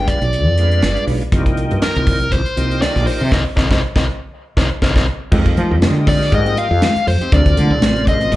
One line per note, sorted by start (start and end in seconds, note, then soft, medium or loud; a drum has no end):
0.00 0.19 G#3 medium
0.00 0.19 B3 medium
0.00 0.20 D4 medium
0.00 0.20 F4 medium
0.08 1.04 D5 medium
0.08 kick medium
0.08 closed hi-hat medium
0.22 0.47 B1 medium
0.22 closed hi-hat soft
0.33 closed hi-hat medium
0.47 0.80 F2 medium
0.58 1.23 G#3 medium
0.58 1.23 B3 medium
0.58 1.23 D4 medium
0.58 1.23 F4 medium
0.58 closed hi-hat medium
0.71 closed hi-hat soft
0.82 0.96 G1 medium
0.82 snare medium
0.82 closed hi-hat medium
0.96 closed hi-hat soft
1.07 1.20 B1 medium
1.07 open hi-hat medium
1.21 closed hi-hat soft
1.32 1.68 C2 loud
1.32 2.19 F3 medium
1.32 2.19 A#3 medium
1.32 2.19 D#4 medium
1.32 2.19 G4 medium
1.32 kick loud
1.32 closed hi-hat medium
1.46 kick medium
1.46 closed hi-hat soft
1.57 closed hi-hat soft
1.71 1.82 G2 medium
1.71 closed hi-hat soft
1.82 2.34 A#4 medium
1.82 muted fretless electric bass stroke soft
1.82 snare loud
1.82 closed hi-hat medium
1.96 2.30 C2 medium
1.96 closed hi-hat soft
2.07 kick medium
2.07 open hi-hat medium
2.21 closed hi-hat soft
2.32 2.45 C2 medium
2.32 2.81 C5 medium
2.32 kick medium
2.32 closed hi-hat medium
2.46 muted fretless electric bass stroke soft
2.46 closed hi-hat soft
2.56 2.81 C2 medium
2.56 3.22 F3 medium
2.56 3.22 A#3 medium
2.56 3.22 D#4 medium
2.56 3.23 G4 medium
2.56 closed hi-hat medium
2.71 closed hi-hat soft
2.82 3.06 D5 medium
2.82 snare medium
2.82 closed hi-hat medium
2.96 3.06 A#1 medium
2.96 snare soft
2.96 closed hi-hat soft
3.07 3.30 C5 medium
3.07 muted fretless electric bass stroke soft
3.07 open hi-hat medium
3.21 3.31 C3 medium
3.32 3.42 C2 medium
3.32 3.41 A#3 medium
3.32 3.41 C4 medium
3.32 3.41 D#4 medium
3.32 3.41 A#4 medium
3.32 3.41 C5 medium
3.32 3.41 D#5 medium
3.32 kick medium
3.32 snare medium
3.57 3.67 C2 medium
3.57 3.66 A#3 medium
3.57 3.66 C4 medium
3.57 3.66 D#4 medium
3.57 3.66 A#4 medium
3.57 3.66 C5 medium
3.57 3.66 D#5 medium
3.57 kick medium
3.57 snare medium
3.70 3.79 C2 medium
3.70 3.78 A#3 medium
3.70 3.78 C4 medium
3.70 3.78 D#4 medium
3.70 3.79 A#4 medium
3.70 3.79 C5 medium
3.70 3.79 D#5 medium
3.70 kick medium
3.70 snare medium
3.95 4.04 C2 medium
3.95 4.03 A#3 medium
3.95 4.03 C4 medium
3.95 4.03 D#4 medium
3.95 4.04 A#4 medium
3.95 4.04 C5 medium
3.95 4.04 D#5 medium
3.95 kick medium
3.95 snare medium
4.57 4.67 C2 loud
4.57 4.66 A#3 medium
4.57 4.66 C4 medium
4.57 4.66 D#4 medium
4.57 4.66 A#4 medium
4.57 4.67 C5 medium
4.57 4.66 D#5 medium
4.57 kick medium
4.57 snare medium
4.82 4.92 C2 medium
4.82 4.91 A#3 medium
4.82 4.91 C4 medium
4.82 4.91 D#4 medium
4.82 4.92 A#4 medium
4.82 4.92 C5 medium
4.82 4.92 D#5 medium
4.82 kick medium
4.82 snare medium
4.96 5.04 C2 medium
4.96 5.04 A#3 medium
4.96 5.04 C4 medium
4.96 5.04 D#4 medium
4.96 5.04 A#4 medium
4.96 5.04 C5 medium
4.96 5.04 D#5 medium
4.96 kick medium
4.96 snare medium
5.32 5.55 F2 loud
5.32 5.75 F3 medium
5.32 5.46 G#3 medium
5.32 5.75 A#3 medium
5.32 5.45 C4 medium
5.32 5.45 D#4 medium
5.32 5.76 D#4 medium
5.32 5.45 G4 medium
5.32 5.76 G4 medium
5.32 kick loud
5.32 crash medium
5.32 muted conga soft
5.46 muted clean electric guitar stroke soft
5.46 kick medium
5.46 closed hi-hat soft
5.57 5.73 F3 medium
5.57 muted clean electric guitar stroke soft
5.57 closed hi-hat medium
5.57 muted conga soft
5.57 high conga medium
5.71 5.84 F2 medium
5.71 5.80 G#3 medium
5.71 5.81 C4 medium
5.71 5.81 D#4 medium
5.71 5.81 G4 medium
5.82 6.29 D3 medium
5.82 6.68 F3 medium
5.82 6.69 A#3 medium
5.82 6.69 G4 medium
5.82 6.69 D#5 medium
5.82 muted clean electric guitar stroke soft
5.82 snare loud
5.82 closed hi-hat medium
5.82 high conga loud
5.95 muted clean electric guitar stroke soft
6.07 6.21 G#3 medium
6.07 6.20 C4 medium
6.07 6.20 D#4 medium
6.07 6.20 G4 medium
6.07 6.32 D5 medium
6.07 kick medium
6.07 open hi-hat medium
6.21 muted clean electric guitar stroke soft
6.21 snare soft
6.32 6.55 G#2 medium
6.32 6.58 D#5 medium
6.32 muted clean electric guitar stroke soft
6.32 kick medium
6.32 closed hi-hat medium
6.32 muted conga soft
6.46 6.56 G#3 soft
6.46 6.56 C4 medium
6.46 6.57 D#4 medium
6.46 6.57 G4 medium
6.46 closed hi-hat soft
6.57 7.04 F5 medium
6.57 muted clean electric guitar stroke soft
6.57 closed hi-hat medium
6.71 6.81 F2 medium
6.82 6.96 G#3 medium
6.82 6.95 C4 medium
6.82 6.95 D#4 medium
6.82 6.95 G4 medium
6.82 snare loud
6.82 closed hi-hat medium
6.82 high conga medium
6.96 muted clean electric guitar stroke soft
6.96 muted fretless electric bass stroke soft
6.96 closed hi-hat soft
7.07 7.20 F2 medium
7.07 7.32 C5 medium
7.07 open hi-hat medium
7.07 muted conga soft
7.21 7.31 C4 soft
7.21 7.33 D#4 soft
7.21 7.32 G4 medium
7.21 muted fretless electric bass stroke soft
7.21 closed hi-hat soft
7.32 7.55 D2 loud
7.32 7.75 C3 medium
7.32 7.75 F3 medium
7.32 7.46 F3 medium
7.32 7.76 A#3 medium
7.32 7.45 C4 medium
7.32 7.45 D4 medium
7.32 7.76 D4 medium
7.32 7.44 G#4 medium
7.32 8.04 D5 medium
7.32 kick loud
7.32 closed hi-hat medium
7.32 muted conga soft
7.45 muted clean electric guitar stroke soft
7.45 kick medium
7.45 closed hi-hat soft
7.57 7.72 D3 medium
7.57 muted clean electric guitar stroke soft
7.57 closed hi-hat medium
7.57 muted conga soft
7.57 high conga medium
7.70 7.82 D2 medium
7.70 7.81 F3 medium
7.70 7.81 C4 medium
7.70 7.81 D4 medium
7.70 7.82 G#4 medium
7.82 8.28 A1 medium
7.82 8.32 C3 medium
7.82 8.30 F3 medium
7.82 8.31 A#3 medium
7.82 8.32 C4 medium
7.82 muted clean electric guitar stroke soft
7.82 snare loud
7.82 closed hi-hat medium
7.82 high conga medium
7.96 muted clean electric guitar stroke soft
7.96 closed hi-hat soft
8.07 8.21 F3 medium
8.07 8.21 C4 medium
8.07 8.20 D4 medium
8.07 8.20 G#4 medium
8.07 8.32 D#5 medium
8.07 kick medium
8.07 closed hi-hat medium
8.21 muted clean electric guitar stroke soft
8.21 closed hi-hat soft
8.32 8.36 G1 loud
8.32 8.36 F3 medium
8.32 8.36 A#3 medium
8.32 8.36 D#4 medium
8.32 8.36 G4 medium
8.32 muted clean electric guitar stroke soft
8.32 closed hi-hat medium
8.32 muted conga soft